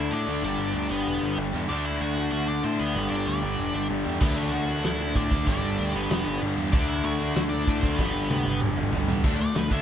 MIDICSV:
0, 0, Header, 1, 7, 480
1, 0, Start_track
1, 0, Tempo, 314795
1, 662, Time_signature, 4, 2, 24, 8
1, 14972, End_track
2, 0, Start_track
2, 0, Title_t, "Lead electric guitar"
2, 0, Program_c, 0, 29
2, 0, Note_on_c, 0, 76, 98
2, 179, Note_on_c, 0, 62, 71
2, 197, Note_on_c, 0, 74, 91
2, 202, Note_off_c, 0, 76, 0
2, 627, Note_off_c, 0, 62, 0
2, 675, Note_off_c, 0, 74, 0
2, 677, Note_on_c, 0, 62, 76
2, 693, Note_on_c, 0, 74, 97
2, 1341, Note_off_c, 0, 62, 0
2, 1386, Note_on_c, 0, 59, 67
2, 1388, Note_off_c, 0, 74, 0
2, 1395, Note_on_c, 0, 71, 82
2, 1609, Note_off_c, 0, 59, 0
2, 1629, Note_off_c, 0, 71, 0
2, 1641, Note_on_c, 0, 59, 64
2, 1647, Note_on_c, 0, 71, 81
2, 2080, Note_off_c, 0, 59, 0
2, 2084, Note_off_c, 0, 71, 0
2, 2576, Note_on_c, 0, 74, 99
2, 2586, Note_on_c, 0, 62, 80
2, 2809, Note_off_c, 0, 62, 0
2, 2822, Note_off_c, 0, 74, 0
2, 2822, Note_on_c, 0, 76, 104
2, 2830, Note_on_c, 0, 64, 73
2, 3051, Note_off_c, 0, 64, 0
2, 3068, Note_off_c, 0, 76, 0
2, 3068, Note_on_c, 0, 78, 101
2, 3080, Note_on_c, 0, 66, 76
2, 3516, Note_off_c, 0, 78, 0
2, 3520, Note_off_c, 0, 66, 0
2, 3535, Note_on_c, 0, 78, 101
2, 3556, Note_on_c, 0, 66, 84
2, 3775, Note_off_c, 0, 66, 0
2, 3780, Note_on_c, 0, 74, 96
2, 3788, Note_off_c, 0, 78, 0
2, 3788, Note_on_c, 0, 62, 69
2, 4008, Note_off_c, 0, 62, 0
2, 4014, Note_on_c, 0, 60, 70
2, 4024, Note_off_c, 0, 74, 0
2, 4024, Note_on_c, 0, 72, 77
2, 4245, Note_off_c, 0, 60, 0
2, 4255, Note_off_c, 0, 72, 0
2, 4255, Note_on_c, 0, 71, 86
2, 4261, Note_on_c, 0, 59, 56
2, 4707, Note_off_c, 0, 59, 0
2, 4717, Note_on_c, 0, 62, 63
2, 4719, Note_off_c, 0, 71, 0
2, 4725, Note_on_c, 0, 74, 75
2, 4955, Note_off_c, 0, 74, 0
2, 4956, Note_off_c, 0, 62, 0
2, 4985, Note_on_c, 0, 62, 61
2, 4992, Note_on_c, 0, 74, 75
2, 5884, Note_off_c, 0, 62, 0
2, 5888, Note_off_c, 0, 74, 0
2, 6414, Note_on_c, 0, 71, 102
2, 6424, Note_on_c, 0, 59, 75
2, 6643, Note_off_c, 0, 71, 0
2, 6643, Note_on_c, 0, 69, 92
2, 6648, Note_off_c, 0, 59, 0
2, 6658, Note_on_c, 0, 57, 70
2, 6884, Note_off_c, 0, 57, 0
2, 6891, Note_on_c, 0, 78, 98
2, 6897, Note_off_c, 0, 69, 0
2, 6903, Note_on_c, 0, 66, 82
2, 7350, Note_off_c, 0, 66, 0
2, 7381, Note_off_c, 0, 78, 0
2, 7387, Note_on_c, 0, 76, 108
2, 7393, Note_on_c, 0, 64, 80
2, 7835, Note_off_c, 0, 64, 0
2, 7871, Note_on_c, 0, 62, 70
2, 7875, Note_on_c, 0, 74, 83
2, 7879, Note_off_c, 0, 76, 0
2, 8315, Note_off_c, 0, 62, 0
2, 8336, Note_off_c, 0, 74, 0
2, 8346, Note_on_c, 0, 62, 75
2, 8360, Note_on_c, 0, 74, 91
2, 9015, Note_off_c, 0, 62, 0
2, 9077, Note_off_c, 0, 74, 0
2, 9084, Note_on_c, 0, 71, 82
2, 9089, Note_on_c, 0, 59, 58
2, 9292, Note_off_c, 0, 59, 0
2, 9303, Note_off_c, 0, 71, 0
2, 9310, Note_on_c, 0, 59, 64
2, 9321, Note_on_c, 0, 71, 78
2, 9752, Note_off_c, 0, 59, 0
2, 9758, Note_off_c, 0, 71, 0
2, 10250, Note_on_c, 0, 74, 104
2, 10273, Note_on_c, 0, 62, 82
2, 10491, Note_off_c, 0, 62, 0
2, 10498, Note_on_c, 0, 76, 100
2, 10503, Note_off_c, 0, 74, 0
2, 10510, Note_on_c, 0, 64, 79
2, 10729, Note_off_c, 0, 64, 0
2, 10729, Note_off_c, 0, 76, 0
2, 10729, Note_on_c, 0, 78, 105
2, 10746, Note_on_c, 0, 66, 78
2, 11184, Note_off_c, 0, 78, 0
2, 11189, Note_off_c, 0, 66, 0
2, 11202, Note_on_c, 0, 78, 108
2, 11222, Note_on_c, 0, 66, 85
2, 11279, Note_off_c, 0, 78, 0
2, 11298, Note_off_c, 0, 66, 0
2, 11424, Note_on_c, 0, 74, 101
2, 11443, Note_on_c, 0, 62, 77
2, 11897, Note_off_c, 0, 62, 0
2, 11904, Note_off_c, 0, 74, 0
2, 11911, Note_on_c, 0, 72, 83
2, 11931, Note_on_c, 0, 60, 65
2, 12131, Note_off_c, 0, 72, 0
2, 12137, Note_on_c, 0, 71, 90
2, 12158, Note_off_c, 0, 60, 0
2, 12160, Note_on_c, 0, 59, 69
2, 12615, Note_off_c, 0, 59, 0
2, 12626, Note_off_c, 0, 71, 0
2, 12644, Note_on_c, 0, 71, 75
2, 12655, Note_on_c, 0, 59, 58
2, 13098, Note_off_c, 0, 71, 0
2, 13104, Note_off_c, 0, 59, 0
2, 14349, Note_on_c, 0, 74, 104
2, 14577, Note_off_c, 0, 74, 0
2, 14586, Note_on_c, 0, 71, 80
2, 14816, Note_off_c, 0, 71, 0
2, 14829, Note_on_c, 0, 76, 78
2, 14972, Note_off_c, 0, 76, 0
2, 14972, End_track
3, 0, Start_track
3, 0, Title_t, "Distorted electric guitar"
3, 0, Program_c, 1, 30
3, 0, Note_on_c, 1, 57, 75
3, 0, Note_on_c, 1, 62, 88
3, 168, Note_on_c, 1, 50, 75
3, 171, Note_off_c, 1, 57, 0
3, 189, Note_on_c, 1, 57, 84
3, 209, Note_off_c, 1, 62, 0
3, 215, Note_on_c, 1, 62, 90
3, 641, Note_off_c, 1, 50, 0
3, 652, Note_off_c, 1, 57, 0
3, 652, Note_on_c, 1, 43, 89
3, 673, Note_on_c, 1, 50, 96
3, 697, Note_on_c, 1, 55, 97
3, 1349, Note_off_c, 1, 55, 0
3, 1364, Note_off_c, 1, 43, 0
3, 1367, Note_on_c, 1, 55, 87
3, 1374, Note_off_c, 1, 50, 0
3, 1392, Note_on_c, 1, 50, 73
3, 1412, Note_on_c, 1, 43, 74
3, 2067, Note_off_c, 1, 43, 0
3, 2082, Note_off_c, 1, 55, 0
3, 2085, Note_on_c, 1, 43, 75
3, 2090, Note_off_c, 1, 50, 0
3, 2108, Note_on_c, 1, 50, 81
3, 2133, Note_on_c, 1, 55, 88
3, 2546, Note_off_c, 1, 50, 0
3, 2561, Note_off_c, 1, 43, 0
3, 2565, Note_on_c, 1, 50, 92
3, 2585, Note_off_c, 1, 55, 0
3, 2591, Note_on_c, 1, 57, 99
3, 2608, Note_off_c, 1, 62, 0
3, 2614, Note_on_c, 1, 62, 103
3, 3281, Note_off_c, 1, 50, 0
3, 3285, Note_off_c, 1, 62, 0
3, 3291, Note_on_c, 1, 62, 93
3, 3294, Note_off_c, 1, 57, 0
3, 3316, Note_on_c, 1, 57, 75
3, 3337, Note_on_c, 1, 50, 72
3, 3987, Note_off_c, 1, 50, 0
3, 4005, Note_on_c, 1, 50, 83
3, 4017, Note_off_c, 1, 57, 0
3, 4038, Note_on_c, 1, 57, 93
3, 4055, Note_off_c, 1, 62, 0
3, 4061, Note_on_c, 1, 62, 87
3, 4481, Note_off_c, 1, 50, 0
3, 4481, Note_on_c, 1, 43, 87
3, 4498, Note_off_c, 1, 57, 0
3, 4512, Note_on_c, 1, 50, 97
3, 4532, Note_on_c, 1, 55, 101
3, 5181, Note_off_c, 1, 55, 0
3, 5199, Note_off_c, 1, 43, 0
3, 5199, Note_on_c, 1, 55, 90
3, 5208, Note_off_c, 1, 50, 0
3, 5226, Note_on_c, 1, 50, 79
3, 5247, Note_on_c, 1, 43, 74
3, 5896, Note_off_c, 1, 43, 0
3, 5914, Note_on_c, 1, 43, 76
3, 5918, Note_off_c, 1, 55, 0
3, 5931, Note_off_c, 1, 50, 0
3, 5947, Note_on_c, 1, 50, 86
3, 5965, Note_on_c, 1, 55, 95
3, 6373, Note_off_c, 1, 50, 0
3, 6391, Note_on_c, 1, 50, 93
3, 6395, Note_off_c, 1, 43, 0
3, 6418, Note_off_c, 1, 55, 0
3, 6424, Note_on_c, 1, 57, 97
3, 6436, Note_off_c, 1, 62, 0
3, 6442, Note_on_c, 1, 62, 104
3, 7112, Note_off_c, 1, 62, 0
3, 7113, Note_off_c, 1, 50, 0
3, 7118, Note_on_c, 1, 62, 82
3, 7124, Note_off_c, 1, 57, 0
3, 7142, Note_on_c, 1, 57, 76
3, 7165, Note_on_c, 1, 50, 64
3, 7821, Note_off_c, 1, 50, 0
3, 7839, Note_on_c, 1, 50, 82
3, 7848, Note_off_c, 1, 57, 0
3, 7864, Note_on_c, 1, 57, 77
3, 7877, Note_off_c, 1, 62, 0
3, 7883, Note_on_c, 1, 62, 94
3, 8314, Note_on_c, 1, 43, 95
3, 8316, Note_off_c, 1, 50, 0
3, 8329, Note_off_c, 1, 57, 0
3, 8340, Note_on_c, 1, 50, 97
3, 8363, Note_on_c, 1, 55, 92
3, 9021, Note_off_c, 1, 55, 0
3, 9034, Note_off_c, 1, 43, 0
3, 9039, Note_on_c, 1, 55, 84
3, 9046, Note_off_c, 1, 50, 0
3, 9069, Note_on_c, 1, 50, 77
3, 9085, Note_on_c, 1, 43, 69
3, 9746, Note_off_c, 1, 43, 0
3, 9756, Note_off_c, 1, 55, 0
3, 9764, Note_on_c, 1, 43, 85
3, 9771, Note_off_c, 1, 50, 0
3, 9793, Note_on_c, 1, 50, 86
3, 9812, Note_on_c, 1, 55, 87
3, 10223, Note_off_c, 1, 50, 0
3, 10238, Note_off_c, 1, 43, 0
3, 10241, Note_on_c, 1, 50, 94
3, 10262, Note_off_c, 1, 55, 0
3, 10269, Note_on_c, 1, 57, 93
3, 10280, Note_off_c, 1, 62, 0
3, 10286, Note_on_c, 1, 62, 98
3, 10956, Note_off_c, 1, 50, 0
3, 10959, Note_off_c, 1, 62, 0
3, 10965, Note_on_c, 1, 62, 78
3, 10970, Note_off_c, 1, 57, 0
3, 10991, Note_on_c, 1, 57, 79
3, 11017, Note_on_c, 1, 50, 70
3, 11655, Note_off_c, 1, 50, 0
3, 11673, Note_on_c, 1, 50, 76
3, 11676, Note_off_c, 1, 57, 0
3, 11695, Note_on_c, 1, 57, 83
3, 11709, Note_off_c, 1, 62, 0
3, 11715, Note_on_c, 1, 62, 90
3, 12152, Note_off_c, 1, 50, 0
3, 12156, Note_on_c, 1, 43, 90
3, 12163, Note_off_c, 1, 57, 0
3, 12187, Note_on_c, 1, 50, 105
3, 12205, Note_on_c, 1, 55, 110
3, 12862, Note_off_c, 1, 55, 0
3, 12873, Note_off_c, 1, 43, 0
3, 12880, Note_on_c, 1, 55, 91
3, 12889, Note_off_c, 1, 50, 0
3, 12909, Note_on_c, 1, 50, 75
3, 12927, Note_on_c, 1, 43, 62
3, 13572, Note_off_c, 1, 43, 0
3, 13591, Note_on_c, 1, 43, 83
3, 13595, Note_off_c, 1, 55, 0
3, 13599, Note_off_c, 1, 50, 0
3, 13618, Note_on_c, 1, 50, 87
3, 13638, Note_on_c, 1, 55, 91
3, 14063, Note_off_c, 1, 50, 0
3, 14071, Note_off_c, 1, 43, 0
3, 14082, Note_on_c, 1, 50, 95
3, 14088, Note_off_c, 1, 55, 0
3, 14092, Note_off_c, 1, 62, 0
3, 14094, Note_on_c, 1, 57, 92
3, 14098, Note_on_c, 1, 62, 95
3, 14301, Note_off_c, 1, 50, 0
3, 14305, Note_off_c, 1, 57, 0
3, 14319, Note_on_c, 1, 50, 73
3, 14324, Note_on_c, 1, 57, 78
3, 14325, Note_off_c, 1, 62, 0
3, 14537, Note_off_c, 1, 50, 0
3, 14542, Note_off_c, 1, 57, 0
3, 14555, Note_on_c, 1, 50, 83
3, 14561, Note_on_c, 1, 57, 89
3, 14770, Note_off_c, 1, 50, 0
3, 14779, Note_off_c, 1, 57, 0
3, 14788, Note_on_c, 1, 50, 84
3, 14797, Note_on_c, 1, 57, 90
3, 14806, Note_on_c, 1, 62, 99
3, 14972, Note_off_c, 1, 50, 0
3, 14972, Note_off_c, 1, 57, 0
3, 14972, Note_off_c, 1, 62, 0
3, 14972, End_track
4, 0, Start_track
4, 0, Title_t, "Distorted electric guitar"
4, 0, Program_c, 2, 30
4, 0, Note_on_c, 2, 57, 74
4, 0, Note_on_c, 2, 62, 85
4, 176, Note_off_c, 2, 57, 0
4, 218, Note_off_c, 2, 62, 0
4, 1841, Note_on_c, 2, 55, 81
4, 1877, Note_on_c, 2, 50, 78
4, 1899, Note_on_c, 2, 43, 69
4, 2062, Note_off_c, 2, 43, 0
4, 2078, Note_off_c, 2, 55, 0
4, 2097, Note_off_c, 2, 50, 0
4, 3756, Note_on_c, 2, 62, 85
4, 3791, Note_on_c, 2, 57, 83
4, 3820, Note_on_c, 2, 50, 71
4, 3983, Note_off_c, 2, 50, 0
4, 4014, Note_off_c, 2, 57, 0
4, 4052, Note_off_c, 2, 62, 0
4, 5679, Note_on_c, 2, 55, 81
4, 5713, Note_on_c, 2, 50, 73
4, 5738, Note_on_c, 2, 43, 69
4, 5902, Note_off_c, 2, 43, 0
4, 5918, Note_off_c, 2, 55, 0
4, 5935, Note_off_c, 2, 50, 0
4, 7585, Note_on_c, 2, 62, 93
4, 7620, Note_on_c, 2, 57, 76
4, 7644, Note_on_c, 2, 50, 68
4, 7825, Note_off_c, 2, 50, 0
4, 7847, Note_off_c, 2, 57, 0
4, 7895, Note_off_c, 2, 62, 0
4, 9518, Note_on_c, 2, 55, 87
4, 9551, Note_on_c, 2, 50, 81
4, 9571, Note_on_c, 2, 43, 78
4, 9745, Note_off_c, 2, 43, 0
4, 9755, Note_off_c, 2, 55, 0
4, 9772, Note_off_c, 2, 50, 0
4, 11440, Note_on_c, 2, 62, 94
4, 11478, Note_on_c, 2, 57, 81
4, 11501, Note_on_c, 2, 50, 66
4, 11665, Note_off_c, 2, 50, 0
4, 11694, Note_off_c, 2, 57, 0
4, 11733, Note_off_c, 2, 62, 0
4, 13352, Note_on_c, 2, 55, 81
4, 13386, Note_on_c, 2, 50, 79
4, 13411, Note_on_c, 2, 43, 69
4, 13569, Note_off_c, 2, 43, 0
4, 13591, Note_off_c, 2, 55, 0
4, 13603, Note_off_c, 2, 50, 0
4, 14972, End_track
5, 0, Start_track
5, 0, Title_t, "Overdriven electric guitar"
5, 0, Program_c, 3, 29
5, 0, Note_on_c, 3, 50, 90
5, 0, Note_on_c, 3, 57, 99
5, 0, Note_on_c, 3, 62, 104
5, 397, Note_off_c, 3, 50, 0
5, 409, Note_off_c, 3, 62, 0
5, 411, Note_off_c, 3, 57, 0
5, 415, Note_on_c, 3, 62, 80
5, 439, Note_on_c, 3, 57, 79
5, 457, Note_on_c, 3, 50, 66
5, 656, Note_off_c, 3, 57, 0
5, 659, Note_off_c, 3, 50, 0
5, 2328, Note_on_c, 3, 55, 87
5, 2353, Note_on_c, 3, 50, 73
5, 2372, Note_on_c, 3, 43, 64
5, 2536, Note_off_c, 3, 50, 0
5, 2562, Note_off_c, 3, 55, 0
5, 2585, Note_off_c, 3, 43, 0
5, 2594, Note_off_c, 3, 62, 0
5, 4260, Note_on_c, 3, 62, 88
5, 4283, Note_on_c, 3, 57, 78
5, 4300, Note_on_c, 3, 50, 69
5, 4501, Note_off_c, 3, 57, 0
5, 4504, Note_off_c, 3, 50, 0
5, 6163, Note_on_c, 3, 55, 86
5, 6184, Note_on_c, 3, 50, 75
5, 6208, Note_on_c, 3, 43, 62
5, 6392, Note_off_c, 3, 50, 0
5, 6400, Note_off_c, 3, 55, 0
5, 6422, Note_off_c, 3, 43, 0
5, 6446, Note_off_c, 3, 62, 0
5, 8095, Note_on_c, 3, 62, 80
5, 8117, Note_on_c, 3, 57, 76
5, 8133, Note_on_c, 3, 50, 63
5, 8319, Note_off_c, 3, 50, 0
5, 8336, Note_off_c, 3, 57, 0
5, 10003, Note_on_c, 3, 55, 76
5, 10026, Note_on_c, 3, 50, 76
5, 10043, Note_on_c, 3, 43, 69
5, 10222, Note_off_c, 3, 50, 0
5, 10238, Note_off_c, 3, 55, 0
5, 10258, Note_off_c, 3, 43, 0
5, 10273, Note_off_c, 3, 62, 0
5, 11930, Note_on_c, 3, 62, 90
5, 11955, Note_on_c, 3, 57, 73
5, 11975, Note_on_c, 3, 50, 68
5, 12173, Note_off_c, 3, 57, 0
5, 12179, Note_off_c, 3, 50, 0
5, 13845, Note_on_c, 3, 55, 75
5, 13868, Note_on_c, 3, 50, 79
5, 13885, Note_on_c, 3, 43, 70
5, 14073, Note_off_c, 3, 50, 0
5, 14078, Note_off_c, 3, 55, 0
5, 14098, Note_off_c, 3, 43, 0
5, 14100, Note_off_c, 3, 62, 0
5, 14972, End_track
6, 0, Start_track
6, 0, Title_t, "Picked electric bass"
6, 0, Program_c, 4, 34
6, 178, Note_on_c, 4, 45, 94
6, 391, Note_off_c, 4, 45, 0
6, 418, Note_on_c, 4, 38, 88
6, 631, Note_off_c, 4, 38, 0
6, 655, Note_on_c, 4, 31, 89
6, 869, Note_off_c, 4, 31, 0
6, 883, Note_on_c, 4, 31, 91
6, 1103, Note_off_c, 4, 31, 0
6, 1129, Note_on_c, 4, 38, 101
6, 1347, Note_off_c, 4, 38, 0
6, 1368, Note_on_c, 4, 31, 95
6, 1586, Note_off_c, 4, 31, 0
6, 1613, Note_on_c, 4, 28, 97
6, 1829, Note_off_c, 4, 28, 0
6, 1854, Note_on_c, 4, 31, 87
6, 2070, Note_off_c, 4, 31, 0
6, 2092, Note_on_c, 4, 31, 96
6, 2309, Note_off_c, 4, 31, 0
6, 2347, Note_on_c, 4, 40, 95
6, 2557, Note_off_c, 4, 40, 0
6, 2583, Note_on_c, 4, 38, 94
6, 3007, Note_off_c, 4, 38, 0
6, 3059, Note_on_c, 4, 38, 99
6, 3485, Note_off_c, 4, 38, 0
6, 3540, Note_on_c, 4, 38, 100
6, 3965, Note_off_c, 4, 38, 0
6, 4026, Note_on_c, 4, 45, 93
6, 4237, Note_off_c, 4, 45, 0
6, 4270, Note_on_c, 4, 38, 94
6, 4479, Note_off_c, 4, 38, 0
6, 4504, Note_on_c, 4, 31, 96
6, 4716, Note_off_c, 4, 31, 0
6, 4737, Note_on_c, 4, 31, 90
6, 4952, Note_off_c, 4, 31, 0
6, 4984, Note_on_c, 4, 38, 94
6, 5196, Note_off_c, 4, 38, 0
6, 5222, Note_on_c, 4, 31, 88
6, 5435, Note_off_c, 4, 31, 0
6, 5461, Note_on_c, 4, 28, 99
6, 5674, Note_off_c, 4, 28, 0
6, 5700, Note_on_c, 4, 31, 88
6, 5913, Note_off_c, 4, 31, 0
6, 5940, Note_on_c, 4, 31, 94
6, 6153, Note_off_c, 4, 31, 0
6, 6198, Note_on_c, 4, 40, 92
6, 6403, Note_off_c, 4, 40, 0
6, 6425, Note_on_c, 4, 38, 98
6, 6847, Note_off_c, 4, 38, 0
6, 6908, Note_on_c, 4, 38, 97
6, 7328, Note_off_c, 4, 38, 0
6, 7384, Note_on_c, 4, 38, 99
6, 7806, Note_off_c, 4, 38, 0
6, 7859, Note_on_c, 4, 45, 101
6, 8072, Note_off_c, 4, 45, 0
6, 8102, Note_on_c, 4, 38, 95
6, 8314, Note_off_c, 4, 38, 0
6, 8349, Note_on_c, 4, 31, 99
6, 8557, Note_off_c, 4, 31, 0
6, 8579, Note_on_c, 4, 31, 88
6, 8792, Note_off_c, 4, 31, 0
6, 8836, Note_on_c, 4, 38, 94
6, 9041, Note_off_c, 4, 38, 0
6, 9068, Note_on_c, 4, 31, 91
6, 9276, Note_off_c, 4, 31, 0
6, 9302, Note_on_c, 4, 28, 103
6, 9513, Note_off_c, 4, 28, 0
6, 9549, Note_on_c, 4, 31, 89
6, 9757, Note_off_c, 4, 31, 0
6, 9781, Note_on_c, 4, 31, 103
6, 9992, Note_off_c, 4, 31, 0
6, 10020, Note_on_c, 4, 40, 94
6, 10231, Note_off_c, 4, 40, 0
6, 10262, Note_on_c, 4, 38, 93
6, 10684, Note_off_c, 4, 38, 0
6, 10734, Note_on_c, 4, 38, 96
6, 11159, Note_off_c, 4, 38, 0
6, 11218, Note_on_c, 4, 38, 103
6, 11641, Note_off_c, 4, 38, 0
6, 11703, Note_on_c, 4, 45, 102
6, 11913, Note_off_c, 4, 45, 0
6, 11941, Note_on_c, 4, 38, 97
6, 12151, Note_off_c, 4, 38, 0
6, 12185, Note_on_c, 4, 31, 96
6, 12394, Note_off_c, 4, 31, 0
6, 12408, Note_on_c, 4, 31, 87
6, 12624, Note_off_c, 4, 31, 0
6, 12657, Note_on_c, 4, 38, 98
6, 12869, Note_off_c, 4, 38, 0
6, 12900, Note_on_c, 4, 31, 93
6, 13111, Note_off_c, 4, 31, 0
6, 13145, Note_on_c, 4, 28, 97
6, 13354, Note_off_c, 4, 28, 0
6, 13382, Note_on_c, 4, 31, 91
6, 13592, Note_off_c, 4, 31, 0
6, 13628, Note_on_c, 4, 31, 96
6, 13835, Note_off_c, 4, 31, 0
6, 13858, Note_on_c, 4, 40, 94
6, 14070, Note_off_c, 4, 40, 0
6, 14089, Note_on_c, 4, 38, 96
6, 14457, Note_off_c, 4, 38, 0
6, 14568, Note_on_c, 4, 38, 92
6, 14754, Note_off_c, 4, 38, 0
6, 14811, Note_on_c, 4, 38, 97
6, 14972, Note_off_c, 4, 38, 0
6, 14972, End_track
7, 0, Start_track
7, 0, Title_t, "Drums"
7, 6422, Note_on_c, 9, 49, 101
7, 6425, Note_on_c, 9, 36, 116
7, 6574, Note_off_c, 9, 49, 0
7, 6577, Note_off_c, 9, 36, 0
7, 6908, Note_on_c, 9, 46, 65
7, 7060, Note_off_c, 9, 46, 0
7, 7379, Note_on_c, 9, 46, 61
7, 7391, Note_on_c, 9, 38, 104
7, 7532, Note_off_c, 9, 46, 0
7, 7544, Note_off_c, 9, 38, 0
7, 7857, Note_on_c, 9, 46, 56
7, 7861, Note_on_c, 9, 36, 86
7, 8010, Note_off_c, 9, 46, 0
7, 8014, Note_off_c, 9, 36, 0
7, 8103, Note_on_c, 9, 36, 93
7, 8256, Note_off_c, 9, 36, 0
7, 8342, Note_on_c, 9, 46, 59
7, 8343, Note_on_c, 9, 36, 99
7, 8495, Note_off_c, 9, 36, 0
7, 8495, Note_off_c, 9, 46, 0
7, 8827, Note_on_c, 9, 46, 61
7, 8979, Note_off_c, 9, 46, 0
7, 9307, Note_on_c, 9, 46, 56
7, 9320, Note_on_c, 9, 38, 111
7, 9460, Note_off_c, 9, 46, 0
7, 9472, Note_off_c, 9, 38, 0
7, 9786, Note_on_c, 9, 46, 61
7, 9938, Note_off_c, 9, 46, 0
7, 10263, Note_on_c, 9, 46, 63
7, 10264, Note_on_c, 9, 36, 116
7, 10416, Note_off_c, 9, 36, 0
7, 10416, Note_off_c, 9, 46, 0
7, 10740, Note_on_c, 9, 46, 60
7, 10893, Note_off_c, 9, 46, 0
7, 11220, Note_on_c, 9, 46, 62
7, 11232, Note_on_c, 9, 38, 110
7, 11372, Note_off_c, 9, 46, 0
7, 11384, Note_off_c, 9, 38, 0
7, 11702, Note_on_c, 9, 36, 91
7, 11706, Note_on_c, 9, 46, 61
7, 11855, Note_off_c, 9, 36, 0
7, 11859, Note_off_c, 9, 46, 0
7, 11941, Note_on_c, 9, 36, 88
7, 12094, Note_off_c, 9, 36, 0
7, 12179, Note_on_c, 9, 36, 96
7, 12192, Note_on_c, 9, 38, 69
7, 12332, Note_off_c, 9, 36, 0
7, 12344, Note_off_c, 9, 38, 0
7, 12660, Note_on_c, 9, 48, 78
7, 12812, Note_off_c, 9, 48, 0
7, 13133, Note_on_c, 9, 47, 89
7, 13285, Note_off_c, 9, 47, 0
7, 13375, Note_on_c, 9, 45, 82
7, 13528, Note_off_c, 9, 45, 0
7, 13614, Note_on_c, 9, 43, 96
7, 13766, Note_off_c, 9, 43, 0
7, 13850, Note_on_c, 9, 43, 99
7, 14003, Note_off_c, 9, 43, 0
7, 14086, Note_on_c, 9, 49, 114
7, 14088, Note_on_c, 9, 36, 119
7, 14238, Note_off_c, 9, 49, 0
7, 14241, Note_off_c, 9, 36, 0
7, 14566, Note_on_c, 9, 46, 67
7, 14578, Note_on_c, 9, 38, 114
7, 14718, Note_off_c, 9, 46, 0
7, 14731, Note_off_c, 9, 38, 0
7, 14806, Note_on_c, 9, 36, 84
7, 14958, Note_off_c, 9, 36, 0
7, 14972, End_track
0, 0, End_of_file